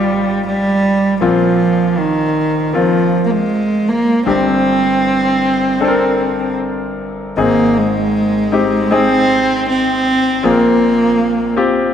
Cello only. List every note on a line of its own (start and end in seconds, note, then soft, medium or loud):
0.00 0.45 G3 medium
0.46 1.18 G3 medium
1.20 1.99 F3 medium
1.97 2.75 D#3 medium
2.74 3.24 F3 medium
3.26 3.33 A#3 medium
3.31 3.90 G#3 medium
3.88 4.26 A#3 medium
4.27 6.55 C4 medium
7.39 7.79 A#3 medium
7.77 8.94 G#3 medium
8.93 9.68 C4 loud
9.69 10.47 C4 medium
10.45 11.58 A#3 medium